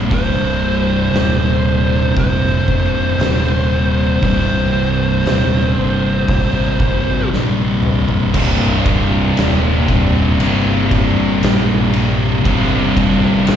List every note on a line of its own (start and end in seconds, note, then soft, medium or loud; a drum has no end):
0.00 0.11 C2 medium
0.00 0.15 C3 medium
0.11 1.09 C1 loud
0.11 2.71 C2 medium
0.11 2.66 G2 medium
0.11 2.18 C5 loud
0.11 kick loud
0.11 open hi-hat medium
0.15 2.67 C3 medium
1.13 2.12 D#1 medium
1.13 snare loud
1.13 open hi-hat soft
2.17 3.15 F1 medium
2.17 4.23 C5 loud
2.17 kick loud
2.17 open hi-hat medium
2.68 3.19 C2 medium
2.68 3.17 G2 medium
2.68 3.22 C3 medium
2.68 kick medium
3.18 4.18 D#1 medium
3.18 4.23 C2 medium
3.18 4.20 G2 medium
3.18 snare loud
3.18 open hi-hat medium
3.23 4.26 C3 medium
4.23 5.21 C1 medium
4.23 6.77 C2 medium
4.23 6.78 G2 loud
4.23 6.78 C3 medium
4.23 7.28 C5 medium
4.23 kick loud
4.23 open hi-hat medium
5.25 5.75 D#1 medium
5.25 snare loud
5.25 open hi-hat medium
5.79 6.27 G1 medium
6.28 7.27 G#1 medium
6.28 kick loud
6.28 open hi-hat medium
6.80 7.30 C2 medium
6.80 7.29 G2 medium
6.80 7.28 C3 medium
6.80 kick medium
7.32 8.30 A#1 medium
7.32 8.31 C2 medium
7.32 8.32 G2 medium
7.32 8.33 C3 medium
7.32 snare medium
7.83 mid tom medium
8.09 floor tom medium
8.34 9.33 C1 loud
8.34 12.42 C2 medium
8.34 12.43 G2 medium
8.34 12.44 C3 loud
8.34 kick loud
8.34 crash loud
8.86 kick loud
8.86 ride medium
9.36 10.35 D#1 medium
9.36 snare loud
9.36 ride loud
9.87 12.42 C2 medium
9.87 12.42 G2 medium
9.87 12.45 C3 medium
9.87 kick medium
9.87 ride medium
10.39 11.38 G1 loud
10.39 ride loud
10.91 kick medium
10.91 ride medium
11.43 12.41 A#1 medium
11.43 snare loud
11.43 ride loud
11.93 ride medium
12.44 13.44 G1 medium
12.44 13.56 C2 loud
12.44 13.56 G2 medium
12.44 13.56 C3 loud
12.44 kick loud
12.44 ride loud
12.97 kick loud
12.97 ride medium
13.47 13.56 A#1 medium
13.47 snare loud
13.47 ride loud